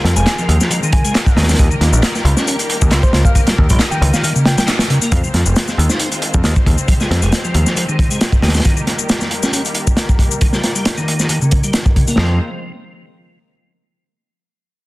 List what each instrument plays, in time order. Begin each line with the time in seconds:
Already playing: string section D#3 G#3 C4 F4 A#4
0.04 picked electric bass F2, snare, closed hi-hat
0.16 picked electric bass F1, tonewheel organ G#3, soft synth lead G#5, closed hi-hat, shaker
0.26 tonewheel organ F4, snare, clap, closed hi-hat, shaker
0.38 tonewheel organ F3, shaker
0.49 picked electric bass D#2, closed hi-hat
0.61 snare, shaker
0.71 tonewheel organ F3, closed hi-hat, shaker
0.83 tonewheel organ D#3, shaker
0.93 soft synth lead G#5, kick, closed hi-hat
1.04 tonewheel organ G#3, closed hi-hat, shaker
1.15 tonewheel organ F4, snare, clap, closed hi-hat, shaker
1.26 kick, shaker
1.37 picked electric bass D#2, tonewheel organ D#3, snare, closed hi-hat
1.43 snare, closed hi-hat
1.49 tonewheel organ C4, snare, closed hi-hat, shaker
1.54 snare, closed hi-hat
1.59 picked electric bass D#2, tonewheel organ D#3, string section G3 A#3 G4, kick, closed hi-hat, shaker
1.71 tonewheel organ D#3, shaker
1.81 picked electric bass D#2, snare, closed hi-hat
1.93 picked electric bass A#1, shaker
2.03 snare, clap, closed hi-hat, shaker
2.15 snare, shaker
2.25 picked electric bass C#2, closed hi-hat
2.37 tonewheel organ C#4, snare, shaker
2.47 tonewheel organ C#4, closed hi-hat, shaker
2.59 closed hi-hat, shaker
2.70 closed hi-hat
2.81 picked electric bass D#2, kick, shaker
2.91 picked electric bass C#2, snare, clap, closed hi-hat, shaker
3.03 soft synth lead C5, kick, shaker
3.13 picked electric bass C#2, snare, closed hi-hat
3.25 soft synth lead F5, kick, shaker
3.35 tonewheel organ D#3, soft synth lead F5, kick, closed hi-hat, shaker
3.47 tonewheel organ G3, snare, closed hi-hat, shaker
3.58 picked electric bass D#2, kick
3.69 picked electric bass A#1, tonewheel organ G3, kick, closed hi-hat, shaker
3.79 tonewheel organ D#4, snare, clap, closed hi-hat, shaker
3.91 tonewheel organ D#3, soft synth lead G5, shaker
4.01 picked electric bass C#2, closed hi-hat
4.13 soft synth lead F5, snare, shaker
4.23 tonewheel organ D#3, soft synth lead F5, closed hi-hat, shaker
4.35 tonewheel organ C#3, shaker
4.45 soft synth lead G5, snare, closed hi-hat
4.58 tonewheel organ G3, soft synth lead G5, snare, closed hi-hat, shaker
4.68 tonewheel organ D#4, snare, clap, closed hi-hat, shaker
4.79 snare, closed hi-hat, shaker
4.90 tonewheel organ C#3, closed hi-hat
5.02 tonewheel organ A#3, closed hi-hat, shaker
5.12 picked electric bass F2, string section D#3 G#3 C4 F4 C5, tonewheel organ F3, kick, closed hi-hat, shaker
5.24 tonewheel organ F3, shaker
5.34 picked electric bass F2, snare, closed hi-hat
5.46 picked electric bass F1, shaker
5.56 snare, closed hi-hat, shaker
5.68 snare, shaker
5.78 picked electric bass D#2, closed hi-hat
5.89 tonewheel organ D#4, snare, shaker
5.99 tonewheel organ D#4, closed hi-hat, shaker
6.12 closed hi-hat, shaker
6.22 closed hi-hat
6.34 picked electric bass F2, kick, shaker
6.44 picked electric bass D#2, snare, closed hi-hat, shaker
6.56 kick, shaker
6.66 picked electric bass D#2, kick, closed hi-hat
6.78 shaker
6.88 tonewheel organ F3, string section G4, kick, closed hi-hat, shaker
7.00 tonewheel organ G#3, snare, shaker
7.11 picked electric bass F2, snare, closed hi-hat
7.22 picked electric bass F1, tonewheel organ G#3, closed hi-hat, shaker
7.32 tonewheel organ F4, snare, closed hi-hat, shaker
7.44 tonewheel organ F3, shaker
7.54 picked electric bass D#2, closed hi-hat
7.66 snare, shaker
7.77 tonewheel organ F3, closed hi-hat, shaker
7.89 tonewheel organ D#3, shaker
7.99 kick, closed hi-hat
8.11 tonewheel organ G#3, closed hi-hat, shaker
8.21 tonewheel organ F4, snare, closed hi-hat, shaker
8.32 kick, shaker
8.42 picked electric bass D#2, tonewheel organ D#3, snare, closed hi-hat
8.48 snare, closed hi-hat
8.54 tonewheel organ C4, snare, closed hi-hat, shaker
8.60 snare, closed hi-hat
8.65 tonewheel organ D#3, string section G3 A#3 A#4, kick, closed hi-hat, shaker
8.77 tonewheel organ D#3, shaker
8.87 snare, closed hi-hat
8.99 shaker
9.09 snare, closed hi-hat, shaker
9.21 snare, shaker
9.31 closed hi-hat
9.43 tonewheel organ C#4, snare, shaker
9.53 tonewheel organ C#4, closed hi-hat, shaker
9.65 closed hi-hat, shaker
9.75 closed hi-hat
9.87 kick, shaker
9.97 snare, closed hi-hat, shaker
10.09 kick, shaker
10.19 kick, closed hi-hat
10.31 shaker
10.41 tonewheel organ D#3, kick, closed hi-hat, shaker
10.53 tonewheel organ G3, snare, shaker
10.63 snare, closed hi-hat
10.75 tonewheel organ G3, closed hi-hat, shaker
10.85 tonewheel organ D#4, snare, closed hi-hat, shaker
10.97 tonewheel organ D#3, shaker
11.08 closed hi-hat
11.19 snare, shaker
11.29 tonewheel organ D#3, closed hi-hat, shaker
11.41 tonewheel organ C#3, shaker
11.51 kick, closed hi-hat
11.63 tonewheel organ G3, closed hi-hat, shaker
11.73 tonewheel organ D#4, snare, closed hi-hat, shaker
11.86 kick, shaker
11.96 tonewheel organ C#3, kick, closed hi-hat
12.08 tonewheel organ A#3, closed hi-hat, shaker
12.18 picked electric bass F2, string section D#3 G#3 C4 F4 C5, tonewheel organ F3, snare